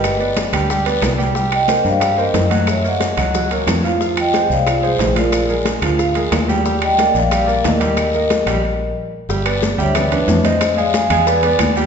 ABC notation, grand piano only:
X:1
M:4/4
L:1/8
Q:1/4=182
K:Eb
V:1 name="Grand piano"
[G,Gg] [=B,=Bd]2 [G,Gg] [G,Gg] [B,Bd]2 [G,Gg] | [G,Gg]2 [B,Bc]2 [G,Gg] [B,Bc]2 [_G,_G_g]- | [_G,_G_g] [B,B_d]2 [G,Gg] [G,Gg] [B,Bd]2 [F,Ff] | [F,Ff]2 [A,Ac]2 [F,Ff] [A,Ac]2 [F,Ff]- |
[F,Ff] [A,AB]2 [F,Ff] [F,Ff] [A,AB]2 [G,Gg] | [G,Gg]2 [B,Bd]2 [G,Gg] [B,Bd]2 [G,Gg]- | [G,Gg] [B,Be]2 [G,Gg] z4 | [G,Gg] [=B,=Bd]2 [G,Gg] [B,Bd] [B,DB]2 [Cce]- |
[Cce] [A,Aa]2 [A,Aa] [=B,=Bd] [B,Bd]2 [G,Gg] |]